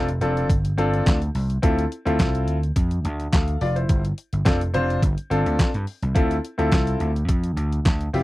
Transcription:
0.00 0.16 F1 medium
0.09 closed hi-hat medium
0.21 0.43 F1 medium
0.21 0.47 C4 medium
0.21 0.47 D4 medium
0.21 0.47 F4 medium
0.21 0.47 A4 loud
0.21 closed hi-hat medium
0.37 closed hi-hat soft
0.50 0.72 G1 medium
0.50 kick loud
0.50 closed hi-hat medium
0.65 closed hi-hat medium
0.78 1.00 G1 medium
0.78 1.16 C4 medium
0.78 1.17 D4 medium
0.78 1.17 F4 medium
0.78 1.17 A4 loud
0.78 closed hi-hat medium
0.94 closed hi-hat soft
1.06 1.29 D2 loud
1.06 kick loud
1.06 snare loud
1.06 clap medium
1.06 closed hi-hat medium
1.22 closed hi-hat soft
1.35 1.57 C2 medium
1.35 open hi-hat medium
1.50 closed hi-hat soft
1.62 1.85 D2 loud
1.62 1.82 C4 medium
1.62 1.82 E4 medium
1.62 1.82 F4 medium
1.62 1.83 A4 loud
1.62 kick loud
1.62 closed hi-hat loud
1.79 closed hi-hat medium
1.92 closed hi-hat medium
2.05 2.21 D2 medium
2.05 2.56 C4 medium
2.05 2.56 E4 medium
2.05 2.56 F4 medium
2.05 2.57 A4 medium
2.05 closed hi-hat medium
2.20 2.48 C2 medium
2.20 kick loud
2.20 snare loud
2.20 clap medium
2.20 closed hi-hat medium
2.35 closed hi-hat medium
2.48 2.70 D2 medium
2.48 closed hi-hat medium
2.63 closed hi-hat medium
2.76 2.98 F2 medium
2.76 kick loud
2.76 closed hi-hat loud
2.91 closed hi-hat medium
3.05 3.27 D2 loud
3.05 closed hi-hat medium
3.20 closed hi-hat soft
3.33 3.55 D2 loud
3.33 3.60 A4 soft
3.33 3.60 F5 medium
3.33 kick loud
3.33 snare loud
3.33 clap medium
3.33 closed hi-hat medium
3.48 closed hi-hat medium
3.61 3.83 F1 medium
3.61 3.76 F4 medium
3.61 3.75 D5 medium
3.61 open hi-hat medium
3.76 4.03 E4 medium
3.76 4.03 C5 medium
3.76 closed hi-hat soft
3.89 4.12 G1 loud
3.89 kick loud
3.89 closed hi-hat medium
4.05 closed hi-hat medium
4.18 closed hi-hat medium
4.33 4.43 G1 medium
4.33 closed hi-hat medium
4.45 4.68 F1 medium
4.45 4.59 C4 medium
4.45 4.59 D4 medium
4.45 4.59 F4 medium
4.45 4.59 A4 medium
4.45 kick loud
4.45 snare loud
4.45 clap medium
4.45 closed hi-hat medium
4.61 closed hi-hat medium
4.74 4.97 F1 medium
4.74 4.99 C4 medium
4.74 5.00 D4 medium
4.74 5.00 F4 medium
4.74 5.00 C5 loud
4.74 closed hi-hat medium
4.90 closed hi-hat medium
5.03 5.14 G1 loud
5.03 kick loud
5.03 closed hi-hat medium
5.18 closed hi-hat medium
5.30 5.43 G1 loud
5.30 5.69 C4 medium
5.30 5.69 D4 medium
5.30 5.69 F4 medium
5.30 5.70 A4 loud
5.30 closed hi-hat medium
5.46 5.56 D2 medium
5.46 closed hi-hat soft
5.59 kick loud
5.59 snare loud
5.59 clap loud
5.59 closed hi-hat medium
5.74 5.85 G2 medium
5.74 closed hi-hat soft
5.87 open hi-hat medium
6.02 6.13 C2 medium
6.02 closed hi-hat medium
6.15 6.38 D2 loud
6.15 6.35 C4 medium
6.15 6.35 E4 medium
6.15 6.35 F4 medium
6.15 6.35 A4 medium
6.15 kick loud
6.15 closed hi-hat medium
6.31 closed hi-hat medium
6.45 closed hi-hat medium
6.58 6.69 D2 medium
6.58 7.09 C4 medium
6.58 7.09 E4 medium
6.58 7.09 F4 medium
6.58 7.09 A4 loud
6.58 closed hi-hat medium
6.72 6.94 C2 medium
6.72 kick loud
6.72 snare loud
6.72 clap medium
6.72 closed hi-hat medium
6.87 closed hi-hat medium
7.00 7.23 D2 medium
7.00 closed hi-hat medium
7.16 closed hi-hat medium
7.28 7.51 F2 medium
7.28 kick loud
7.28 closed hi-hat loud
7.44 closed hi-hat medium
7.56 7.79 D2 medium
7.56 closed hi-hat medium
7.72 closed hi-hat medium
7.86 8.08 D2 loud
7.86 kick loud
7.86 snare loud
7.86 clap medium
7.86 closed hi-hat medium
8.01 closed hi-hat soft
8.13 8.23 F1 medium
8.13 8.23 C4 medium
8.13 8.23 E4 medium
8.13 8.23 F4 medium
8.13 8.23 G4 medium
8.13 open hi-hat medium

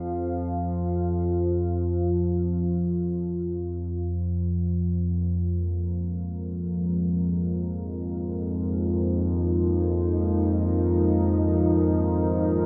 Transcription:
0.00 12.66 F2 medium
0.00 12.66 F3 medium
0.00 7.45 F4 medium
0.00 6.25 C5 medium
0.00 5.88 F5 medium
2.90 12.66 F2 medium
4.01 12.66 A#4 medium
4.39 12.66 G#3 medium
5.97 12.66 D#4 medium

